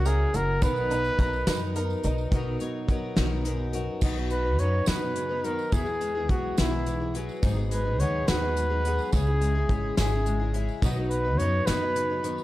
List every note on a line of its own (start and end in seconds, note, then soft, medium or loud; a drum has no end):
0.00 0.23 C#2 medium
0.00 0.33 F#4 medium
0.00 0.62 E5 medium
0.05 0.33 F#3 medium
0.05 0.34 C#4 medium
0.05 0.34 E4 medium
0.05 0.37 G#4 medium
0.05 0.62 A#4 medium
0.05 0.32 A#4 medium
0.05 closed hi-hat medium
0.33 0.57 F#1 medium
0.33 0.63 C#4 soft
0.33 0.63 E4 soft
0.33 0.62 F#4 medium
0.33 0.62 A#4 soft
0.33 0.63 A#4 medium
0.33 closed hi-hat medium
0.62 1.09 B1 medium
0.62 0.90 B2 medium
0.62 0.91 D#3 medium
0.62 0.91 F#3 medium
0.62 1.76 B3 medium
0.62 0.91 B3 medium
0.62 0.90 D#4 medium
0.62 0.88 A#4 medium
0.62 2.01 B4 loud
0.62 kick loud
0.62 closed hi-hat medium
0.62 tambourine medium
0.76 tambourine soft
0.90 1.17 F#3 soft
0.90 1.19 B3 soft
0.90 1.19 D#4 soft
0.90 2.03 D#4 medium
0.90 1.18 A#4 medium
0.90 closed hi-hat medium
0.90 tambourine soft
1.05 tambourine soft
1.18 1.42 B1 medium
1.18 1.47 F#3 medium
1.18 1.47 B3 medium
1.18 1.46 D#4 medium
1.18 1.45 A#4 medium
1.18 2.32 A#5 medium
1.18 kick medium
1.18 closed hi-hat medium
1.18 tambourine soft
1.33 tambourine soft
1.47 1.93 F#2 medium
1.47 1.76 B2 medium
1.47 1.76 D#3 medium
1.47 1.73 F#3 medium
1.47 1.75 B3 medium
1.47 1.76 D#4 medium
1.47 1.75 A#4 medium
1.47 2.32 B4 medium
1.47 snare loud
1.47 closed hi-hat medium
1.47 tambourine loud
1.75 2.03 F#3 medium
1.75 2.04 B3 medium
1.75 2.03 D#4 medium
1.75 2.33 A#4 medium
1.75 2.02 A#4 medium
1.75 closed hi-hat medium
1.90 tambourine soft
2.03 2.27 B1 medium
2.03 2.31 F#3 soft
2.03 2.32 B3 soft
2.03 2.32 D#4 medium
2.03 2.32 A#4 medium
2.03 closed hi-hat medium
2.03 tambourine soft
2.18 tambourine soft
2.31 2.55 B1 medium
2.31 2.60 B2 medium
2.31 2.60 D#3 medium
2.31 2.61 F#3 medium
2.31 2.60 B3 medium
2.31 2.59 D#4 medium
2.31 3.73 F#4 soft
2.31 2.58 A#4 medium
2.31 kick medium
2.31 closed hi-hat medium
2.59 2.86 F#3 soft
2.59 2.88 B3 soft
2.59 2.89 D#4 medium
2.59 2.88 A#4 medium
2.59 3.99 C#5 soft
2.59 closed hi-hat medium
2.88 3.16 F#3 medium
2.88 3.16 B3 medium
2.88 3.15 D#4 medium
2.88 3.15 A#4 medium
2.88 kick medium
2.88 closed hi-hat soft
3.16 3.87 B1 medium
3.16 3.46 B2 medium
3.16 3.46 D#3 medium
3.16 3.43 F#3 medium
3.16 3.44 B3 medium
3.16 3.45 D#4 medium
3.16 3.45 A#4 medium
3.16 snare medium
3.16 closed hi-hat medium
3.44 4.03 F#2 medium
3.44 3.73 F#3 medium
3.44 3.74 B3 medium
3.44 3.73 D#4 medium
3.44 3.72 A#4 medium
3.44 closed hi-hat medium
3.73 4.01 F#3 soft
3.73 4.02 B3 soft
3.73 4.02 D#4 soft
3.73 3.99 F#4 medium
3.73 4.02 A#4 medium
3.73 closed hi-hat medium
4.01 4.59 B1 medium
4.01 4.16 B2 medium
4.01 4.17 D#3 medium
4.01 4.17 F#3 medium
4.01 4.17 B3 medium
4.01 4.16 D#4 medium
4.01 5.76 F#4 medium
4.01 4.15 B4 medium
4.01 kick medium
4.01 crash medium
4.01 tambourine medium
4.16 4.46 F#3 soft
4.16 4.45 B3 soft
4.16 4.44 D#4 soft
4.16 4.43 B4 soft
4.16 tambourine soft
4.30 6.01 F#3 soft
4.30 4.61 B4 medium
4.30 closed hi-hat soft
4.30 tambourine soft
4.44 4.57 F#3 soft
4.44 4.59 B3 soft
4.44 4.59 D#4 soft
4.44 4.59 B4 soft
4.58 4.82 F#2 medium
4.58 4.87 F#3 medium
4.58 4.87 B3 medium
4.58 4.88 D#4 medium
4.58 4.88 B4 medium
4.58 4.89 C#5 medium
4.58 closed hi-hat medium
4.86 5.57 F#2 medium
4.86 5.01 B2 medium
4.86 5.02 D#3 medium
4.86 5.02 F#3 medium
4.86 5.02 B3 medium
4.86 5.01 D#4 medium
4.86 5.46 B4 medium
4.86 5.00 B4 medium
4.86 snare loud
4.86 closed hi-hat medium
4.86 tambourine medium
5.01 5.32 F#3 soft
5.01 5.30 B3 soft
5.01 5.29 D#4 soft
5.01 5.28 B4 soft
5.15 5.45 C#3 medium
5.15 closed hi-hat soft
5.15 tambourine soft
5.29 5.43 F#3 soft
5.29 5.44 B3 soft
5.29 5.44 D#4 soft
5.29 5.44 B4 soft
5.44 5.73 D#3 medium
5.44 5.72 F#3 medium
5.44 5.72 B3 medium
5.44 5.73 D#4 medium
5.44 5.75 A#4 medium
5.44 5.74 B4 medium
5.44 closed hi-hat soft
5.59 tambourine soft
5.72 6.29 E2 medium
5.72 5.87 E3 medium
5.72 5.87 F#3 medium
5.72 5.87 B3 medium
5.72 5.86 E4 medium
5.72 6.31 G#4 medium
5.72 5.84 G#4 medium
5.72 kick medium
5.72 closed hi-hat medium
5.72 tambourine medium
5.85 6.16 B3 soft
5.85 6.15 E4 soft
5.85 6.13 G#4 soft
5.85 tambourine soft
6.01 7.15 G#3 soft
6.01 closed hi-hat medium
6.01 tambourine soft
6.14 6.28 B3 soft
6.14 6.29 E4 soft
6.14 6.29 G#4 soft
6.28 6.53 B1 medium
6.28 6.56 F#3 medium
6.28 6.57 B3 medium
6.28 6.58 E4 medium
6.28 6.58 F#4 medium
6.28 6.58 G#4 medium
6.28 kick medium
6.28 closed hi-hat medium
6.57 7.28 B1 medium
6.57 6.86 D#3 medium
6.57 6.72 E3 medium
6.57 6.72 F#3 medium
6.57 6.72 B3 medium
6.57 6.72 E4 medium
6.57 7.18 E4 medium
6.57 6.70 G#4 medium
6.57 snare medium
6.57 closed hi-hat medium
6.57 tambourine loud
6.71 7.02 B3 soft
6.71 7.00 E4 soft
6.71 6.98 G#4 soft
6.86 7.15 E3 medium
6.86 closed hi-hat medium
6.86 tambourine soft
7.00 7.14 B3 soft
7.00 7.15 E4 soft
7.00 7.14 G#4 soft
7.14 7.43 F#3 soft
7.14 7.43 B3 medium
7.14 7.44 E4 medium
7.14 7.44 G#4 medium
7.14 closed hi-hat medium
7.29 tambourine soft
7.42 8.00 G#1 medium
7.42 7.57 G#2 medium
7.42 7.57 D#3 medium
7.42 7.57 F#3 medium
7.42 7.57 B3 medium
7.42 7.56 D#4 medium
7.42 7.55 G#4 medium
7.42 kick loud
7.42 closed hi-hat medium
7.42 tambourine medium
7.56 7.87 F#3 soft
7.56 7.86 B3 soft
7.56 7.84 D#4 soft
7.56 7.83 G#4 medium
7.56 tambourine soft
7.71 8.55 G#3 soft
7.71 8.01 B4 medium
7.71 closed hi-hat medium
7.71 tambourine soft
7.84 7.97 F#3 soft
7.84 7.99 B3 soft
7.84 8.00 D#4 soft
7.84 7.99 G#4 soft
7.98 8.23 D#2 medium
7.98 8.27 F#3 medium
7.98 8.27 B3 medium
7.98 8.27 D#4 medium
7.98 8.28 G#4 medium
7.98 8.29 C#5 medium
7.98 closed hi-hat medium
8.27 8.97 D#2 medium
8.27 8.42 G#2 medium
8.27 8.42 D#3 medium
8.27 8.42 F#3 medium
8.27 8.42 B3 medium
8.27 8.41 D#4 medium
8.27 9.10 F#4 medium
8.27 8.40 G#4 medium
8.27 9.12 B4 medium
8.27 snare loud
8.27 closed hi-hat medium
8.27 tambourine medium
8.41 8.72 F#3 soft
8.41 8.71 B3 soft
8.41 8.70 D#4 soft
8.41 8.68 G#4 soft
8.56 9.10 G#3 medium
8.56 closed hi-hat medium
8.56 tambourine soft
8.69 8.83 F#3 soft
8.69 8.84 B3 soft
8.69 8.85 D#4 soft
8.69 8.84 G#4 soft
8.84 9.13 F#3 soft
8.84 9.13 B3 medium
8.84 9.14 D#4 soft
8.84 9.14 G#4 medium
8.84 closed hi-hat medium
8.98 tambourine soft
9.12 9.70 C#2 medium
9.12 9.27 C#3 medium
9.12 9.27 G#3 medium
9.12 9.28 C#4 medium
9.12 9.28 E4 medium
9.12 9.94 G#4 medium
9.12 9.26 G#4 medium
9.12 kick medium
9.12 closed hi-hat medium
9.12 tambourine medium
9.27 9.57 C#4 soft
9.27 9.56 E4 soft
9.27 9.54 G#4 medium
9.41 10.25 G#3 medium
9.41 closed hi-hat medium
9.41 tambourine soft
9.55 9.70 C#4 soft
9.55 9.70 E4 soft
9.55 9.69 G#4 soft
9.69 9.93 G#1 medium
9.69 9.97 G#3 medium
9.69 9.98 C#4 medium
9.69 9.98 E4 medium
9.69 9.99 G#4 medium
9.69 kick medium
9.69 closed hi-hat soft
9.97 10.67 G#1 medium
9.97 10.12 C#3 medium
9.97 10.12 G#3 medium
9.97 10.13 C#4 medium
9.97 10.13 E4 medium
9.97 10.58 G#4 medium
9.97 10.11 G#4 medium
9.97 snare medium
9.97 closed hi-hat medium
9.97 tambourine medium
10.12 10.42 C#4 soft
10.12 10.40 E4 soft
10.12 10.38 G#4 soft
10.26 10.79 G#3 medium
10.26 closed hi-hat medium
10.40 10.54 C#4 soft
10.40 10.55 E4 soft
10.40 10.54 G#4 soft
10.54 10.82 G#3 medium
10.54 10.83 C#4 soft
10.54 10.84 E4 medium
10.54 10.84 G#4 medium
10.54 closed hi-hat soft
10.69 tambourine soft
10.82 11.40 B1 medium
10.82 10.97 B2 medium
10.82 10.97 D#3 medium
10.82 10.97 F#3 medium
10.82 10.97 B3 medium
10.82 10.97 D#4 medium
10.82 12.44 F#4 medium
10.82 10.95 B4 medium
10.82 kick medium
10.82 closed hi-hat medium
10.82 tambourine medium
10.96 11.27 F#3 soft
10.96 11.26 B3 soft
10.96 11.25 D#4 soft
10.96 11.23 B4 soft
10.96 tambourine soft
11.10 12.44 F#3 soft
11.10 11.39 B4 medium
11.10 closed hi-hat soft
11.10 tambourine soft
11.25 11.37 F#3 soft
11.25 11.39 B3 soft
11.25 11.40 D#4 soft
11.25 11.39 B4 soft
11.38 11.63 F#2 medium
11.38 11.67 F#3 soft
11.38 11.68 B3 medium
11.38 11.68 D#4 medium
11.38 11.68 B4 medium
11.38 11.68 C#5 medium
11.38 closed hi-hat medium
11.66 12.37 F#2 medium
11.66 11.82 B2 medium
11.66 11.82 D#3 medium
11.66 11.82 F#3 medium
11.66 11.82 B3 medium
11.66 11.81 D#4 medium
11.66 12.44 B4 medium
11.66 11.80 B4 medium
11.66 snare medium
11.66 closed hi-hat medium
11.66 tambourine medium
11.81 12.11 F#3 soft
11.81 12.10 B3 soft
11.81 12.10 D#4 soft
11.81 12.08 B4 soft
11.95 12.23 C#3 medium
11.95 closed hi-hat medium
12.10 12.22 F#3 soft
12.10 12.23 B3 soft
12.10 12.24 D#4 soft
12.10 12.24 B4 soft
12.23 12.44 D#3 medium
12.23 12.44 F#3 medium
12.23 12.44 B3 medium
12.23 12.44 D#4 medium
12.23 12.44 B4 medium
12.23 closed hi-hat medium
12.38 tambourine soft